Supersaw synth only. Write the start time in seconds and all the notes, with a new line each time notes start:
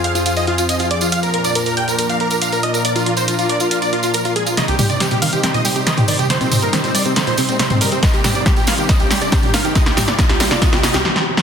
0.04 F5
0.15 F4
0.26 F4
0.37 D#5
0.48 F4
0.59 F4
0.69 D#5
0.80 F4
0.91 D5
1.01 F4
1.12 F5
1.23 A#4
1.34 A#4
1.45 D5
1.55 A#4
1.66 A#4
1.77 G5
1.88 A#4
1.99 A#4
2.10 F5
2.21 A#4
2.31 A#4
2.42 F5
2.53 A#4
2.63 D#5
2.74 A#4
2.85 D5
2.96 F4
3.06 F4
3.17 C5
3.28 F4
3.39 F4
3.49 D5
3.61 F4
3.71 F4
3.82 D5
3.93 F4
4.03 F4
4.14 A#4
4.25 F4
4.36 G#4
4.46 F4
4.57 D#5
4.68 G4
4.79 G4
4.90 D5
5.00 G4
5.11 G4
5.22 F5
5.33 G4
5.44 G4
5.54 D#5
5.65 G4
5.76 G4
5.87 D#5
5.97 G4
6.08 D5
6.19 G4
6.30 C5
6.41 C4
6.52 C4
6.62 A#4
6.73 C4
6.84 C4
6.95 D5
7.05 C4
7.16 C4
7.27 C5
7.38 C4
7.49 C4
7.60 C5
7.70 C4
7.81 A#4
7.92 C4
8.03 D#5
8.14 G4
8.24 G4
8.35 D5
8.46 G4
8.57 G4
8.68 F5
8.78 G4
8.89 D#5
9.00 G4
9.11 G4
9.21 D5
9.32 G4
9.43 G4
9.54 F5
9.65 G4
9.75 D#5
9.86 G4
9.97 G4
10.08 D5
10.18 D#5
10.29 G4
10.40 G4
10.51 D5
10.61 D#5
10.72 G4
10.83 D#5
10.94 G4